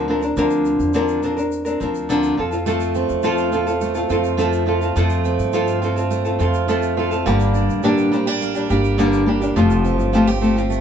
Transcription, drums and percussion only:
0.22 shaker medium
0.37 shaker medium
0.50 shaker medium
0.65 shaker soft
0.80 shaker soft
0.94 shaker medium
1.08 shaker soft
1.23 shaker soft
1.38 shaker medium
1.52 shaker medium
1.66 shaker medium
1.81 shaker soft
1.95 shaker soft
2.10 shaker medium
2.23 shaker medium
2.52 shaker soft
2.67 shaker medium
2.80 shaker medium
2.95 shaker soft
3.09 shaker soft
3.23 shaker medium
3.38 shaker soft
3.52 shaker soft
3.67 shaker soft
3.81 shaker medium
3.95 shaker medium
4.10 shaker soft
4.24 shaker soft
4.39 shaker medium
4.53 shaker medium
4.82 shaker soft
4.96 shaker medium
5.10 shaker soft
5.24 shaker soft
5.39 shaker soft
5.53 shaker medium
5.67 shaker soft
5.83 shaker soft
5.97 shaker medium
6.11 shaker medium
6.25 shaker medium
6.40 shaker soft
6.54 shaker soft
6.69 shaker medium
6.82 shaker medium
7.12 shaker soft
7.26 shaker medium
7.40 shaker medium
7.54 shaker soft
7.70 shaker soft
7.83 shaker medium
7.98 shaker soft
8.13 shaker soft
8.28 shaker medium
8.41 shaker medium
8.55 shaker medium
8.70 shaker soft
8.84 shaker soft
8.99 shaker medium
9.13 shaker medium
9.42 shaker medium
9.57 shaker medium
9.70 shaker medium
9.85 shaker soft
10.00 shaker soft
10.14 shaker medium
10.28 shaker soft
10.43 shaker soft
10.58 shaker soft
10.71 shaker medium

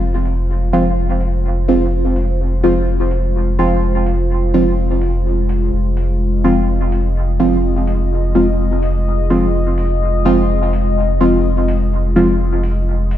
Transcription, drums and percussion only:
0.25 open hi-hat medium
0.73 open hi-hat medium
1.21 open hi-hat medium
1.68 open hi-hat medium
2.16 open hi-hat medium
2.64 open hi-hat medium
3.11 open hi-hat medium
3.59 open hi-hat medium
4.06 open hi-hat medium
4.54 open hi-hat medium
5.02 open hi-hat medium
5.49 open hi-hat medium
5.97 open hi-hat medium
6.44 open hi-hat medium
6.92 open hi-hat medium
7.40 open hi-hat medium
7.87 open hi-hat medium
8.35 open hi-hat medium
8.83 open hi-hat medium
9.30 open hi-hat medium
9.78 open hi-hat medium
10.25 open hi-hat medium
10.73 open hi-hat medium
11.21 open hi-hat medium
11.68 open hi-hat medium
12.16 open hi-hat medium
12.63 open hi-hat medium
13.11 open hi-hat medium

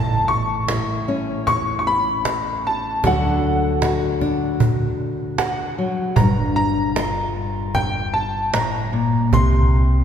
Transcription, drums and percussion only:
0.49 cajon slap soft
0.68 cajon slap medium
1.09 cajon slap soft
1.47 cajon bass medium
1.47 cajon slap soft
2.25 cajon slap medium
3.04 cajon bass medium
3.04 cajon slap soft
3.63 cajon slap soft
3.82 cajon slap medium
4.02 cajon slap soft
4.21 cajon bass medium
4.21 cajon slap soft
4.60 cajon bass medium
5.38 cajon slap medium
5.78 cajon slap soft
6.16 cajon bass medium
6.76 cajon slap soft
6.96 cajon slap medium
7.36 cajon slap soft
7.75 cajon bass medium
7.75 cajon slap soft
8.54 cajon slap medium
9.33 cajon bass medium
9.91 cajon slap soft

